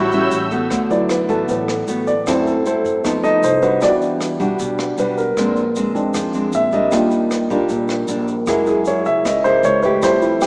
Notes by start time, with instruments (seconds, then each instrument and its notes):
Already playing: upright bass A1, nylon-string guitar A2, tenor saxophone F#4, string section C#5 A5 E6 G6
0.12 nylon-string guitar G3 C#4 E4, closed hi-hat, shaker
0.31 upright bass A1, closed hi-hat, shaker
0.51 nylon-string guitar A3 B3 F#4, kick, closed hi-hat, shaker
0.70 upright bass D2, nylon-string guitar D3, kick, cross-stick, closed hi-hat, shaker
0.90 grand piano F#3 B3 E4 D5, closed hi-hat, shaker
1.09 grand piano B4, cross-stick, closed hi-hat, shaker
1.29 upright bass A1, nylon-string guitar A3 B3 F#4, grand piano A4, kick, closed hi-hat, shaker
1.49 upright bass A1, nylon-string guitar A2, grand piano B4, kick, closed hi-hat, shaker
1.68 cross-stick, closed hi-hat, shaker
1.87 upright bass A1, nylon-string guitar A3 B3 F#4, closed hi-hat, shaker
2.07 grand piano D5, closed hi-hat, shaker
2.27 upright bass F#2, nylon-string guitar F#3 C4 E4 A4, grand piano A3 C4 E4 C5, kick, cross-stick, closed hi-hat, shaker
2.47 grand piano A4, closed hi-hat, shaker
2.66 nylon-string guitar C4 E4 A4, grand piano C5, closed hi-hat, shaker
2.84 upright bass F#2, closed hi-hat, shaker
3.04 upright bass F2, nylon-string guitar F3 B3 D#4 A4, grand piano A3 B3 D#4, kick, cross-stick, closed hi-hat, shaker
3.23 nylon-string guitar B3 D#4 A4, grand piano D#5, closed hi-hat, shaker
3.42 upright bass C2, grand piano C5, closed hi-hat, shaker
3.62 nylon-string guitar G3 D4 F#4, grand piano B4, kick, closed hi-hat, shaker
3.81 upright bass E2, nylon-string guitar E3, grand piano G3 D4 F#4 D5, kick, cross-stick, closed hi-hat, shaker
4.01 closed hi-hat, shaker
4.21 cross-stick, closed hi-hat, shaker
4.40 upright bass B1, grand piano G3 D4 F#4, nylon-string guitar G3 D4 F#4, kick, closed hi-hat, shaker
4.59 upright bass B1, nylon-string guitar B2, kick, closed hi-hat, shaker
4.78 cross-stick, closed hi-hat, shaker
4.98 upright bass B1, nylon-string guitar G3 D4 F#4, grand piano B4, closed hi-hat, shaker
5.18 grand piano A#4, closed hi-hat, shaker
5.37 upright bass A#1, nylon-string guitar A#2 G#3 C4 D4, kick, cross-stick, closed hi-hat, shaker
5.56 closed hi-hat, shaker
5.76 nylon-string guitar G#3 C4 D4, closed hi-hat, shaker
5.94 upright bass F2, grand piano G#3 C4 D4, closed hi-hat, shaker
6.14 upright bass F2, nylon-string guitar F3, kick, cross-stick, closed hi-hat, shaker
6.33 nylon-string guitar G#3 C4 D4, closed hi-hat, shaker
6.52 upright bass A#1, grand piano E5, closed hi-hat, shaker
6.72 nylon-string guitar G3 A#3 D4, grand piano D#5, kick, closed hi-hat, shaker
6.91 upright bass D#2, nylon-string guitar D#3, grand piano G3 D4 F4, kick, cross-stick, closed hi-hat, shaker
7.11 closed hi-hat, shaker
7.31 cross-stick, closed hi-hat, shaker
7.50 upright bass A#1, nylon-string guitar G3 A#3 D4, grand piano G3 D4 F4, kick, closed hi-hat, shaker
7.69 upright bass A#1, nylon-string guitar A#2, kick, closed hi-hat, shaker
7.88 cross-stick, closed hi-hat, shaker
8.08 upright bass A#1, nylon-string guitar G3 A#3 D4, closed hi-hat, shaker
8.28 closed hi-hat, shaker
8.46 upright bass F#2, nylon-string guitar F#3 A#3 E4 G#4, grand piano G#3 A#3 E4, kick, cross-stick, closed hi-hat, shaker
8.66 grand piano G#4, closed hi-hat, shaker
8.85 nylon-string guitar A#3 E4 G#4, grand piano C#5, closed hi-hat, shaker
9.05 upright bass C#2, grand piano E5, closed hi-hat, shaker
9.25 upright bass C#2, nylon-string guitar C#3, grand piano D#5, kick, cross-stick, closed hi-hat, shaker
9.44 nylon-string guitar A#3 E4 G#4, grand piano C5, closed hi-hat, shaker
9.63 upright bass C#2, grand piano C#5, closed hi-hat, shaker
9.83 nylon-string guitar A3 E4 G4, grand piano B4, kick, closed hi-hat, shaker
10.02 upright bass F2, nylon-string guitar F3, grand piano G3 A3 E4 C5, kick, cross-stick, closed hi-hat, shaker
10.22 grand piano E4, closed hi-hat, shaker
10.41 grand piano G4, cross-stick, closed hi-hat, shaker